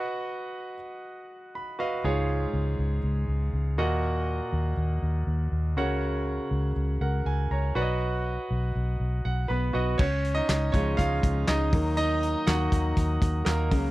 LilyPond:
<<
  \new Staff \with { instrumentName = "Grand piano" } { \time 4/4 \key dis \minor \tempo 4 = 121 << { r2. b''4 | r1 | r1 | r2 <ais' fis''>8 gis''8 <cis'' ais''>4 |
r2 r8 fis''8 <b b' b''>4 | <cis' cis''>8. <dis' dis''>8. <cis' cis''>8 <eis' eis''>4 <dis' dis''>4 | <dis' dis''>4 <fis' fis''>4 r4 <ais ais'>4 | } \\ { <fis' b' dis'' fis''>4. r2 <fis' b' dis'' eis''>8 | <eis' gis' cis'' eis''>2 r4. <fis' ais' dis'' fis''>8~ | <fis' ais' dis'' fis''>4. r2 <fis' ais' cis'' fis''>8~ | <fis' ais' cis'' fis''>4. r2 <fis' b' d'' dis'' fis''>8~ |
<fis' b' d'' dis'' fis''>4. r2 <fis' b' dis'' fis''>8 | r1 | r1 | } >> }
  \new Staff \with { instrumentName = "Grand piano" } { \clef bass \time 4/4 \key dis \minor r1 | gis,4. r2 ais,8~ | ais,4 r2 r8 cis8~ | cis4 r2. |
r1 | r4. <cis eis gis>8 r4. <dis fis ais>8~ | <dis fis ais>4 <dis fis ais>8 r2 <cis fis ais>8 | }
  \new Staff \with { instrumentName = "Fingered electric bass" } { \clef bass \time 4/4 \key dis \minor r1 | cis,4 cis,8 cis,8 cis,8 cis,8 cis,8 dis,8~ | dis,4 dis,8 dis,8 dis,8 dis,8 dis,8 cis,8~ | cis,4 cis,8 cis,8 cis,8 cis,8 cis,8 b,,8~ |
b,,4 b,,8 b,,8 b,,8 b,,8 b,,8 b,,8 | cis,4 cis,8 cis,8 cis,8 cis,8 cis,8 dis,8~ | dis,4 dis,8 dis,8 dis,8 dis,8 dis,8 cis,8 | }
  \new DrumStaff \with { instrumentName = "Drums" } \drummode { \time 4/4 r4 r4 r4 r4 | r4 r4 r4 r4 | r4 r4 r4 r4 | r4 r4 r4 r4 |
r4 r4 r4 r4 | <cymc bd>8 hh8 <hc hh sn>8 <hh bd>8 <hh bd>8 <hh bd>8 <hc hh sn>8 <hho bd>8 | hh8 hh8 <hc hh sn>8 <hh bd>8 <hh bd>8 <hh bd>8 <hc hh sn>8 <hho bd>8 | }
>>